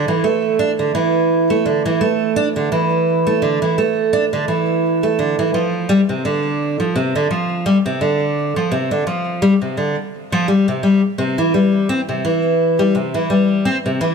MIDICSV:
0, 0, Header, 1, 2, 480
1, 0, Start_track
1, 0, Key_signature, -1, "minor"
1, 0, Tempo, 705882
1, 1845, Time_signature, 4, 2, 24, 8
1, 9619, End_track
2, 0, Start_track
2, 0, Title_t, "Twelve-string acoustic guitar"
2, 0, Program_c, 0, 25
2, 55, Note_on_c, 0, 52, 68
2, 152, Note_off_c, 0, 52, 0
2, 162, Note_on_c, 0, 57, 67
2, 393, Note_off_c, 0, 57, 0
2, 403, Note_on_c, 0, 62, 82
2, 480, Note_off_c, 0, 62, 0
2, 538, Note_on_c, 0, 50, 61
2, 634, Note_off_c, 0, 50, 0
2, 644, Note_on_c, 0, 52, 76
2, 1006, Note_off_c, 0, 52, 0
2, 1020, Note_on_c, 0, 57, 72
2, 1120, Note_off_c, 0, 57, 0
2, 1126, Note_on_c, 0, 50, 65
2, 1247, Note_off_c, 0, 50, 0
2, 1262, Note_on_c, 0, 52, 75
2, 1356, Note_off_c, 0, 52, 0
2, 1366, Note_on_c, 0, 57, 76
2, 1595, Note_off_c, 0, 57, 0
2, 1607, Note_on_c, 0, 62, 99
2, 1683, Note_off_c, 0, 62, 0
2, 1741, Note_on_c, 0, 50, 73
2, 1835, Note_off_c, 0, 50, 0
2, 1848, Note_on_c, 0, 52, 79
2, 2208, Note_off_c, 0, 52, 0
2, 2220, Note_on_c, 0, 57, 72
2, 2320, Note_off_c, 0, 57, 0
2, 2326, Note_on_c, 0, 50, 74
2, 2446, Note_off_c, 0, 50, 0
2, 2461, Note_on_c, 0, 52, 71
2, 2555, Note_off_c, 0, 52, 0
2, 2570, Note_on_c, 0, 57, 71
2, 2797, Note_off_c, 0, 57, 0
2, 2809, Note_on_c, 0, 62, 91
2, 2883, Note_off_c, 0, 62, 0
2, 2944, Note_on_c, 0, 50, 73
2, 3037, Note_off_c, 0, 50, 0
2, 3047, Note_on_c, 0, 52, 69
2, 3407, Note_off_c, 0, 52, 0
2, 3421, Note_on_c, 0, 57, 69
2, 3521, Note_off_c, 0, 57, 0
2, 3528, Note_on_c, 0, 50, 71
2, 3648, Note_off_c, 0, 50, 0
2, 3664, Note_on_c, 0, 52, 75
2, 3757, Note_off_c, 0, 52, 0
2, 3768, Note_on_c, 0, 53, 74
2, 3996, Note_off_c, 0, 53, 0
2, 4006, Note_on_c, 0, 55, 94
2, 4082, Note_off_c, 0, 55, 0
2, 4143, Note_on_c, 0, 48, 69
2, 4236, Note_off_c, 0, 48, 0
2, 4249, Note_on_c, 0, 50, 75
2, 4608, Note_off_c, 0, 50, 0
2, 4622, Note_on_c, 0, 53, 63
2, 4721, Note_off_c, 0, 53, 0
2, 4730, Note_on_c, 0, 48, 77
2, 4848, Note_off_c, 0, 48, 0
2, 4865, Note_on_c, 0, 50, 73
2, 4957, Note_off_c, 0, 50, 0
2, 4967, Note_on_c, 0, 53, 66
2, 5196, Note_off_c, 0, 53, 0
2, 5207, Note_on_c, 0, 55, 93
2, 5283, Note_off_c, 0, 55, 0
2, 5342, Note_on_c, 0, 48, 72
2, 5436, Note_off_c, 0, 48, 0
2, 5447, Note_on_c, 0, 50, 71
2, 5807, Note_off_c, 0, 50, 0
2, 5823, Note_on_c, 0, 53, 70
2, 5921, Note_off_c, 0, 53, 0
2, 5926, Note_on_c, 0, 48, 72
2, 6047, Note_off_c, 0, 48, 0
2, 6060, Note_on_c, 0, 50, 67
2, 6155, Note_off_c, 0, 50, 0
2, 6165, Note_on_c, 0, 53, 70
2, 6395, Note_off_c, 0, 53, 0
2, 6406, Note_on_c, 0, 55, 96
2, 6482, Note_off_c, 0, 55, 0
2, 6538, Note_on_c, 0, 48, 62
2, 6634, Note_off_c, 0, 48, 0
2, 6646, Note_on_c, 0, 50, 72
2, 6766, Note_off_c, 0, 50, 0
2, 7021, Note_on_c, 0, 53, 104
2, 7115, Note_off_c, 0, 53, 0
2, 7126, Note_on_c, 0, 55, 75
2, 7247, Note_off_c, 0, 55, 0
2, 7262, Note_on_c, 0, 48, 72
2, 7356, Note_off_c, 0, 48, 0
2, 7365, Note_on_c, 0, 55, 73
2, 7486, Note_off_c, 0, 55, 0
2, 7605, Note_on_c, 0, 48, 76
2, 7726, Note_off_c, 0, 48, 0
2, 7739, Note_on_c, 0, 52, 72
2, 7834, Note_off_c, 0, 52, 0
2, 7848, Note_on_c, 0, 55, 73
2, 8076, Note_off_c, 0, 55, 0
2, 8086, Note_on_c, 0, 60, 87
2, 8162, Note_off_c, 0, 60, 0
2, 8219, Note_on_c, 0, 48, 64
2, 8314, Note_off_c, 0, 48, 0
2, 8327, Note_on_c, 0, 52, 78
2, 8687, Note_off_c, 0, 52, 0
2, 8698, Note_on_c, 0, 55, 73
2, 8799, Note_off_c, 0, 55, 0
2, 8804, Note_on_c, 0, 48, 69
2, 8925, Note_off_c, 0, 48, 0
2, 8937, Note_on_c, 0, 52, 78
2, 9033, Note_off_c, 0, 52, 0
2, 9043, Note_on_c, 0, 55, 77
2, 9274, Note_off_c, 0, 55, 0
2, 9285, Note_on_c, 0, 60, 92
2, 9361, Note_off_c, 0, 60, 0
2, 9422, Note_on_c, 0, 48, 70
2, 9516, Note_off_c, 0, 48, 0
2, 9525, Note_on_c, 0, 52, 82
2, 9619, Note_off_c, 0, 52, 0
2, 9619, End_track
0, 0, End_of_file